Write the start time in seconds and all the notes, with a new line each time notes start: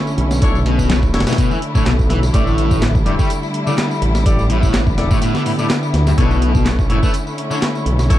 Already playing: D3 A3 C#4 E4, sub drop
0.07 tambourine
0.18 B1, closed hi-hat
0.31 snare, tambourine
0.42 D4 E4 A4 C#5, kick, closed hi-hat, tambourine
0.55 tambourine
0.66 B2, closed hi-hat
0.79 kick, tambourine
0.90 B2, snare, clap, closed hi-hat, tambourine
1.03 kick, tambourine
1.14 F#1 D4 E4 A4 C#5, snare, closed hi-hat
1.20 snare, closed hi-hat
1.27 B2 D4 E4 A4 B4, snare, closed hi-hat, tambourine
1.33 snare, closed hi-hat
1.38 B2, kick, closed hi-hat, tambourine
1.51 E3, tambourine
1.62 closed hi-hat
1.75 B1 A2 D4 E4 A4 C#5, kick, tambourine
1.86 B1 B2, snare, clap, closed hi-hat, tambourine
1.99 kick, tambourine
2.10 E3, snare, closed hi-hat
2.23 snare, tambourine
2.34 A1 A2 G3 E4 G4 A4 D5, kick, closed hi-hat, tambourine
2.47 tambourine
2.58 closed hi-hat
2.71 kick, tambourine
2.82 snare, clap, closed hi-hat, tambourine
2.95 kick, tambourine
3.06 E1 G2 E4 G4 A4 D5, closed hi-hat
3.19 G3 E4 G4 A4 C#5, kick, tambourine
3.30 closed hi-hat, tambourine
3.43 tambourine
3.54 closed hi-hat
3.67 C#3 E4 G4 A4 D5, tambourine
3.78 snare, clap, closed hi-hat, tambourine
3.91 tambourine
4.02 A1, closed hi-hat
4.15 snare, tambourine
4.26 B3 E4 G4 A4 D5, kick, closed hi-hat, tambourine
4.39 tambourine
4.50 A2, closed hi-hat
4.63 kick, tambourine
4.74 A2, snare, clap, closed hi-hat, tambourine
4.87 kick, tambourine
4.98 E1 E4 G4 A4 D5, snare, closed hi-hat
5.11 A2 E4 G4 A4 C#5, kick, tambourine
5.22 A2, closed hi-hat, tambourine
5.35 D3, snare, tambourine
5.46 A2, open hi-hat
5.59 A2 E4 G4 A4 D5, tambourine
5.70 snare, clap, closed hi-hat, tambourine
5.83 tambourine
5.94 D2, snare, closed hi-hat
6.07 G2, snare, tambourine
6.18 B1 B2 A3 C#4 D4 E4 A4 C#5, kick, closed hi-hat, tambourine
6.31 tambourine
6.42 closed hi-hat
6.55 kick, tambourine
6.66 snare, clap, closed hi-hat, tambourine
6.79 kick, tambourine
6.90 F#1 A2 D4 E4 A4 C#5, closed hi-hat
7.03 A3 D4 E4 A4 B4, kick, tambourine
7.14 closed hi-hat, tambourine
7.27 tambourine
7.38 closed hi-hat
7.51 D3 D4 E4 A4 C#5, tambourine
7.62 snare, clap, closed hi-hat, tambourine
7.75 tambourine
7.86 B1, closed hi-hat
7.99 snare, tambourine
8.10 D4 E4 F#4 A4 C#5, kick, closed hi-hat, tambourine